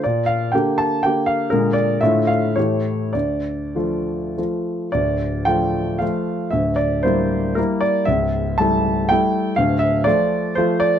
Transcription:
X:1
M:3/4
L:1/8
Q:1/4=117
K:Dm
V:1 name="Grand piano"
d f g a g f | B d e f ^c2 | d4 z2 | d2 g2 f2 |
e d c2 B d | e2 a2 g2 | f e d2 c d |]
V:2 name="Grand piano" clef=bass
B,,2 [D,B,G]2 [D,B,G]2 | [B,,D,_A,_A]2 [=A,,D,=A,F]2 [A,,E,A,G]2 | D,,2 [F,A,F]2 [F,A,F]2 | [D,,,D,,]2 [F,A,F]2 [F,A,F]2 |
[D,,,D,,]2 [G,B,E]2 [G,B,E]2 | [^C,,,^C,,]2 [G,A,E]2 [G,A,E]2 | [D,,,D,,]2 [F,A,F]2 [F,A,F]2 |]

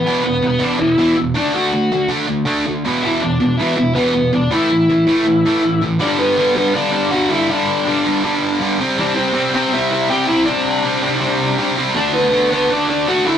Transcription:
X:1
M:4/4
L:1/8
Q:1/4=161
K:G
V:1 name="Lead electric guitar"
[B,B] [B,B] [B,B] [Dd] [Ee]2 z [Dd] | [Ff]3 z4 z | [Ee] [Dd]2 [Ee] [Ee] [B,B]2 [Dd] | [Ee]6- [Ee] z |
[Dd] [B,B]2 [B,B] [Dd] [Dd] [Ff] [Ee] | [Dd]6- [Dd] z | [Dd] [Cc]2 [Cc] [Ee] [Ee] [Gg] [Ee] | [Dd]6- [Dd] z |
[Dd] [B,B]2 [B,B] [Dd] [Dd] [Ff] [Ee] |]
V:2 name="Distorted electric guitar" clef=bass
[E,,B,,E,] [E,,B,,] [E,,B,,] [E,,B,,E,] [E,,B,,] [E,,B,,E,] [E,,B,,] [D,A,D] | [D,A,D] [D,A,] [D,A,] [D,A,D] [D,A,] [D,A,D] [D,A,] [E,,B,,E,] | [E,,B,,E,] [E,,B,,] [E,,B,,] [E,,B,,E,] [E,,B,,] [E,,B,,E,] [E,,B,,] [E,,B,,] | [A,,E,A,] [A,,E,] [A,,E,] [A,,E,A,] [A,,E,] [A,,E,A,] [A,,E,] [A,,E,] |
[G,,D,G,]2 [G,,D,G,] [G,,D,G,] [G,,D,G,]2 [G,,D,G,] [G,,D,G,] | [G,,D,G,]2 [G,,D,G,] [G,,D,G,] [G,,D,G,]2 [G,,D,G,] [C,G,C] | [C,G,C]2 [C,G,C] [C,G,C] [C,G,C]2 [C,G,C] [C,G,C] | [C,G,C]2 [C,G,C] [C,G,C] [C,G,C]2 [C,G,C] [C,G,C] |
[D,A,D]2 [D,A,D] [D,A,D] [D,A,D]2 [D,A,D] [D,A,D] |]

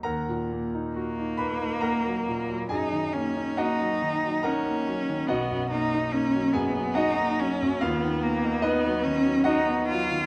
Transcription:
X:1
M:3/4
L:1/16
Q:1/4=69
K:Ebm
V:1 name="Grand piano"
[Bgb]6 [cc']2 [Bgb]4 | [Aa]4 [Geg]4 [Bgb]4 | [^F^d^f]6 [Aa]2 [Fdf]4 | [Ff]4 [^D=B^d]4 [^Fd^f]4 |]
V:2 name="Grand piano" clef=bass
E,, B,, B, E G E B, E B, G, B,, G, | G,, E, B, E B, G, E, G, E B, G, E, | =B,,, ^F,, ^A, ^D A, ^F, F,, F, D A, F, F,, | ^D,, ^D, =B, ^D B, ^F, D, F, D B, F, D, |]
V:3 name="Cello"
z4 B,8 | E2 D2 E4 D4 | =B,2 ^D2 _D2 B,2 ^D2 _D2 | =B,2 _B,2 =B,2 D2 ^D2 F2 |]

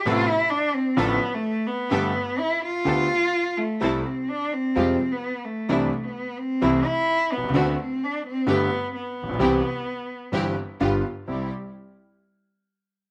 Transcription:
X:1
M:4/4
L:1/16
Q:1/4=129
K:C
V:1 name="String section"
[B,CA]2 z6 [DFA]2 z6 | [B,GA]2 z6 [B,GA]2 z6 | [CEA]2 z6 [_A,FG]2 z6 | [CDE]2 z6 [A,CE]2 z6 |
[CD^F]2 z6 [A,B,G]2 z6 | [CEG]2 z6 [CEG]2 z2 [B,FG]2 z2 | [CEG]2 z12 z2 |]
V:2 name="Cello"
F2 E2 D2 C2 B,3 A,3 B,2- | B,4 E2 F8 A,2- | A,2 C2 D2 C4- C B,3 A,2- | A,3 B,3 C4 E4 B,2- |
B,2 C2 D2 C2 B,4 B,4- | B,12 z4 | G,2 z12 z2 |]
V:3 name="Grand piano" clef=bass
[A,,,A,,C,A,B,E]2 z6 [A,,,A,,D,F,A,F]2 z6 | [G,,,G,,D,A,B,G]2 z6 [D,,D,A,B,G]2 z6 | [C,,C,G,A,E]2 z6 [F,,C,F,G,_A,F]2 z6 | [C,,C,E,G,D]2 z6 [C,,C,E,A,E]2 z4 z/2 B,,,/2 C,,/2 _D,,/2 |
[D,,D,A,C^F]2 z6 [G,,,G,,D,A,B,G]2 z4 z/2 A,,,/2 _B,,,/2 =B,,,/2 | [C,,C,E,G,CG]2 z6 [G,,,G,,E,G,CG]2 z2 [G,,,G,,D,G,B,F]2 z2 | [C,,G,CE]2 z12 z2 |]
V:4 name="Upright bass" clef=bass
A,,,3/2 z6 z/2 A,,,3/2 z6 z/2 | G,,,3/2 z6 z/2 D,,3/2 z6 z/2 | C,,3/2 z6 z/2 F,,3/2 z6 z/2 | C,,3/2 z6 z/2 C,,3/2 z4 z B,,,/2 C,,/2 _D,,/2 |
D,,3/2 z6 z/2 G,,,3/2 z4 z A,,,/2 _B,,,/2 =B,,,/2 | C,,3/2 z6 z/2 G,,,3/2 z2 z/2 G,,,3/2 z2 z/2 | C,,2 z12 z2 |]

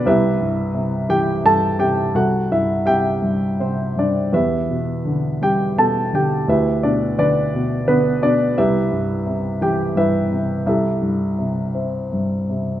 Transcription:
X:1
M:3/4
L:1/8
Q:1/4=85
K:Ador
V:1 name="Grand piano"
[EGBe]3 [Gg] [Aa] [Gg] | [FAf] [Ee] [Geg]2 [Cc] [Dd] | [EGBe]3 [Gg] [Aa] [Gg] | [EGBe] [Dd] [DBd]2 [B,B] [Dd] |
[EGBe]3 [Gg] [EBe]2 | [EGAe]4 z2 |]
V:2 name="Grand piano" clef=bass
C,, G,, C, E, G,, C, | C,, G,, C, G,, C, G,, | E,, B,, D, G, B,, D, | D,, B,, D, B,, D, B,, |
C,, G,, C, E, G,, C, | C,, G,, C, C G,, C, |]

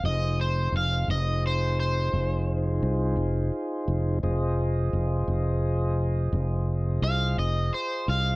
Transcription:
X:1
M:12/8
L:1/8
Q:3/8=57
K:Fm
V:1 name="Overdriven electric guitar"
e c f e c c4 z3 | z8 f e c f |]
V:2 name="Tonewheel organ"
[EFAc]12 | [FAce]12 |]
V:3 name="Fretless electric bass" clef=bass
F,,,2 F,,, F,,,3 F,,,2 C,, F,,, z F,,, | F,,,2 F,,, F,,,3 F,,,2 C,, F,,, z C,, |]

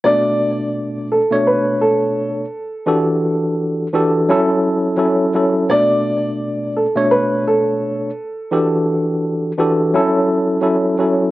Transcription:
X:1
M:4/4
L:1/16
Q:"Swing 16ths" 1/4=85
K:Bm
V:1 name="Upright piano"
d6 A2 B2 A6 | z16 | d6 A2 B2 A6 | z16 |]
V:2 name="Tine electric piano"
[B,,A,Dd]6 z [B,,A,Dc]6 z3 | [E,DFGA]6 [E,DFGA]2 [F,CEA]4 [F,CEA]2 [F,CEA]2 | [B,,A,Dd]6 z [B,,A,Dc]6 z3 | [E,DFGA]6 [E,DFGA]2 [F,CEA]4 [F,CEA]2 [F,CEA]2 |]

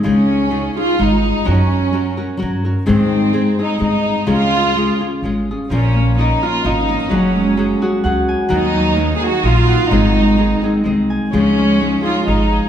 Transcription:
X:1
M:3/4
L:1/16
Q:"Swing" 1/4=128
K:Db
V:1 name="Nylon-string guitar"
[D,A,EFA]4 [A,EFA]2 [EFA]2 [A,EFA]4 | [G,DGB]4 [G,DGB]2 [DGB]2 [G,DGB]2 [DGB]2 | [A,,E,A,CEA]4 [A,CEA]2 [A,CEA]2 [A,CEA]4 | [D,A,DFA]4 [A,DFA]2 [DFA]2 [A,DFA]2 [DFA]2 |
[B,,F,B,DFB]4 [B,DFB]2 [B,DFB]2 [B,DFB]2 [B,DFB]2 | [G,DGA]4 [G,DGA]2 [DGA]2 [G,DGA]4 | [E,G,EGB]4 [G,EGB]4 [G,EGB]2 [EGB]2 | [A,,E,A,CEA]4 [A,CEA]2 [A,CEA]2 [A,CEA]4 |
[D,A,EFA]4 [A,EFA]2 [EFA]2 [A,EFA]4 |]
V:2 name="Violin section"
D6 F2 E4 | D6 z6 | C6 E2 E4 | F6 z6 |
D4 E2 F2 E4 | D6 z6 | E4- E3/2 A/2 G2 F4 | E6 z6 |
D6 F2 E4 |]
V:3 name="Harp"
z12 | z12 | z12 | z12 |
F,2 B,2 D2 F2 f2 b2 | G,2 A,2 D2 G2 g2 a2 | E,2 G,2 B,2 E2 e2 g2 | E,2 A,2 C2 E2 e2 a2 |
F,2 A,2 D2 E2 F2 A2 |]
V:4 name="Upright bass" clef=bass
D,,8 A,,,4 | G,,8 =G,,4 | A,,8 A,,4 | D,,8 A,,,4 |
B,,,8 A,,,4 | G,,,8 D,,4 | E,,8 B,,,4 | A,,,8 C,,4 |
D,,8 A,,,4 |]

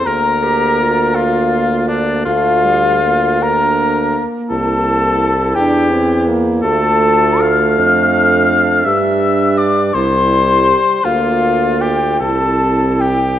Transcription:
X:1
M:6/8
L:1/8
Q:3/8=55
K:Cmix
V:1 name="Flute"
b3 f2 d | f3 b2 z | a3 g2 z | a2 f'4 |
e'2 d' c'3 | f2 g a2 g |]
V:2 name="Oboe"
B3 F2 D | F3 B2 z | A3 G2 z | A2 f4 |
e2 d c3 | F2 G A2 G |]
V:3 name="Clarinet"
B G F4 | F3 D2 z | E6 | F3 D3 |
D3 E2 z | F3 E3 |]
V:4 name="French horn"
B,6 | A, G, B,4- | B,2 z D C B, | A,6 |
G,3 G,3 | B,2 z C3 |]
V:5 name="Bassoon" clef=bass
D,,6 | D,,4- D,, z | C,,3 E,,3 | D,,3 F,,3 |
G,,3 C,,2 z | D,,3 C,,3 |]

